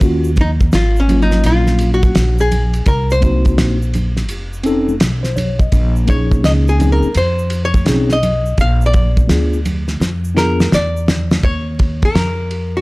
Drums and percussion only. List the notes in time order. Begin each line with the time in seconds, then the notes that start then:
0.01 kick, ride, shaker
0.24 shaker
0.36 kick, ride, low conga, shaker
0.60 kick, shaker
0.72 snare, hi-hat pedal, ride, shaker
0.96 shaker
1.09 ride, low conga, shaker
1.31 snare, shaker
1.44 ride, shaker
1.67 snare, shaker
1.78 ride, shaker
2.03 kick, ride, high conga, shaker
2.15 snare, hi-hat pedal, ride, shaker
2.38 shaker
2.52 ride, low conga, shaker
2.74 ride, shaker
2.86 kick, ride, shaker
3.10 shaker
3.22 kick, ride, low conga, shaker
3.45 kick, ride, shaker
3.58 snare, hi-hat pedal, ride, shaker
3.82 shaker
3.94 ride, low conga, shaker
4.17 snare, ride, shaker
4.29 ride, shaker
4.53 shaker
4.64 ride, shaker
4.89 high conga, shaker
5.00 snare, hi-hat pedal, ride, shaker
5.24 snare, shaker
5.37 ride, low conga, shaker
5.59 kick, shaker
5.72 kick, ride, shaker
5.96 shaker
6.07 kick, ride, low conga, shaker
6.32 kick, shaker
6.44 snare, hi-hat pedal, ride, shaker
6.68 shaker
6.80 ride, low conga, shaker
7.02 shaker
7.14 ride, shaker
7.39 shaker
7.50 ride, shaker
7.74 kick, ride, high conga, shaker
7.86 snare, hi-hat pedal, ride, shaker
8.09 snare, shaker
8.23 ride, low conga, shaker
8.46 shaker
8.58 kick, ride, shaker
8.81 shaker
8.93 kick, ride, high conga, low conga, shaker
9.17 kick, high conga, shaker
9.29 snare, hi-hat pedal, ride, shaker
9.53 shaker
9.65 ride, low conga, shaker
9.88 snare, ride, high conga, shaker
10.02 snare, shaker
10.24 shaker
10.37 snare, shaker
10.60 snare, high conga, shaker
10.72 snare, shaker
10.97 shaker
11.08 snare, low conga, shaker
11.31 snare, high conga, shaker
11.43 kick, ride
11.79 kick, ride
12.02 kick, ride
12.15 snare, hi-hat pedal, ride
12.51 ride